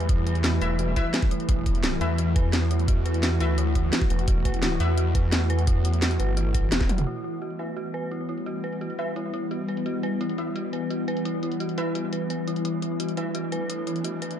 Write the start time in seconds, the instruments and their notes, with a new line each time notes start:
Already playing: detuned saw bass E2, synth drone E3 G3 A3, ambient pad E4 B4
0.00 closed hi-hat
0.09 synth bell E4, kick, closed hi-hat
0.27 synth bell B4, closed hi-hat
0.35 closed hi-hat
0.44 synth bell F#4, snare, closed hi-hat
0.61 detuned saw bass E1, synth stab E4 B4 E5, synth bell B4, closed hi-hat
0.79 synth bell F#4, closed hi-hat
0.96 synth stab E4 B4 E5, synth bell B4, kick, closed hi-hat
1.14 synth bell B4, snare, closed hi-hat
1.23 kick
1.31 synth bell E4, closed hi-hat
1.40 closed hi-hat
1.49 detuned saw bass E1, synth bell E4, synth drone F#4, kick, closed hi-hat
1.66 synth bell E4, kick, closed hi-hat
1.75 closed hi-hat
1.80 synth bell F#4, ambient pad F#5, snare, closed hi-hat
2.01 detuned saw bass E2, synth stab E4 B4 E5, synth bell B4, closed hi-hat
2.18 synth bell F#4, closed hi-hat
2.36 synth bell B4, kick, closed hi-hat
2.53 synth bell E4, snare, closed hi-hat
2.71 synth bell E4, closed hi-hat
2.79 closed hi-hat
2.88 synth bell F#4, kick, closed hi-hat
3.06 synth bell B4, closed hi-hat
3.14 closed hi-hat
3.23 synth bell F#4, snare, closed hi-hat
3.40 detuned saw bass D2, synth stab E4 B4 E5, synth bell B4, closed hi-hat
3.58 synth bell E4, closed hi-hat
3.75 synth bell E4, kick, closed hi-hat
3.93 synth bell F#4, snare, closed hi-hat
4.02 kick
4.10 detuned saw bass E1, synth bell B4, closed hi-hat
4.19 closed hi-hat
4.28 detuned saw bass E1, synth bell F#4, kick, closed hi-hat
4.45 synth bell B4, kick, closed hi-hat
4.54 closed hi-hat
4.63 synth bell E4, snare, closed hi-hat
4.80 detuned saw bass E2, synth bell E4, synth stab E4 B4 E5, closed hi-hat
4.97 synth bell F#4, closed hi-hat
5.15 synth bell B4, kick, closed hi-hat
5.32 synth bell F#4, snare, closed hi-hat
5.50 synth bell B4, closed hi-hat
5.59 closed hi-hat
5.67 synth bell E4, kick, closed hi-hat
5.85 synth bell E4, closed hi-hat
5.93 closed hi-hat
6.02 synth bell F#4, snare, closed hi-hat
6.11 closed hi-hat
6.20 detuned saw bass G1, synth bell B4, closed hi-hat
6.37 synth bell F#4, closed hi-hat
6.54 synth bell B4, kick, closed hi-hat
6.72 detuned saw bass E1, synth bell G4, snare, closed hi-hat, high tom
6.81 kick, snare
6.89 synth bell F#4, closed hi-hat, mid tom
6.98 closed hi-hat, mid tom
7.07 synth drone E3 G3 B3, synth bell E4, ambient pad E4, closed hi-hat, crash
7.19 ambient pad B4
7.24 synth bell E4, closed hi-hat
7.42 synth bell F#4, closed hi-hat
7.50 closed hi-hat
7.59 synth stab E4 B4 E5, synth bell B4, closed hi-hat
7.77 synth bell F#4, closed hi-hat
7.94 synth bell B4, closed hi-hat
8.11 synth bell E4, closed hi-hat
8.29 synth bell E4, closed hi-hat
8.38 closed hi-hat
8.46 synth bell F#4, closed hi-hat
8.64 synth bell B4, closed hi-hat
8.72 closed hi-hat
8.81 synth bell F#4, closed hi-hat
8.90 closed hi-hat
8.99 synth stab E4 B4 E5, synth bell B4, closed hi-hat
9.16 synth bell E4, closed hi-hat
9.34 synth bell E4, closed hi-hat
9.51 synth bell F#4, closed hi-hat
9.68 synth bell B4, closed hi-hat
9.77 closed hi-hat
9.86 synth bell F#4, closed hi-hat
10.03 synth bell B4, closed hi-hat
10.21 synth bell E4, closed hi-hat
10.29 closed hi-hat
10.38 synth bell E4, synth stab E4 B4 E5, closed hi-hat
10.56 synth bell F#4, closed hi-hat
10.73 synth bell B4, closed hi-hat
10.90 synth bell F#4, closed hi-hat
11.08 synth bell B4, closed hi-hat
11.17 closed hi-hat
11.25 synth bell E4, closed hi-hat
11.43 synth bell E4, closed hi-hat
11.52 closed hi-hat
11.60 synth bell F#4, closed hi-hat
11.69 closed hi-hat
11.78 synth stab E4 B4 E5, synth bell B4, closed hi-hat
11.95 synth bell F#4, closed hi-hat
12.13 synth bell B4, closed hi-hat
12.30 synth bell B4, closed hi-hat
12.47 synth bell E4, closed hi-hat
12.56 closed hi-hat
12.65 synth drone A3 D4, synth bell E4, closed hi-hat
12.82 synth bell E4, closed hi-hat
13.00 synth bell F#4, closed hi-hat
13.09 closed hi-hat
13.17 synth stab E4 B4 E5, synth bell B4, closed hi-hat
13.35 synth bell F#4, closed hi-hat
13.52 synth bell B4, closed hi-hat
13.70 synth bell E4, closed hi-hat
13.87 synth bell E4, closed hi-hat
13.96 closed hi-hat
14.04 synth bell F#4, closed hi-hat
14.22 synth bell B4, closed hi-hat
14.31 closed hi-hat